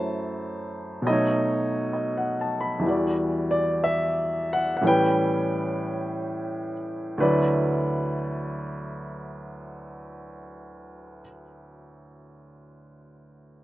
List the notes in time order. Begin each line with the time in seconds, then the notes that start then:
Already playing: F#2 F#3 A3 E4 C5 A5
1.02 B2 F#3
1.07 A3 D#4 D#5
1.13 C#5
1.93 D#5
2.18 F#5
2.41 A5
2.61 B5
2.79 E2 E3
2.85 G3 F#4
2.90 D5
3.51 D5
3.84 E5
4.53 F#5
4.77 F#5
4.81 A2 E3 G3
4.86 C#4 B4 G5
7.18 D2 D3 F#3 E4 B4 D5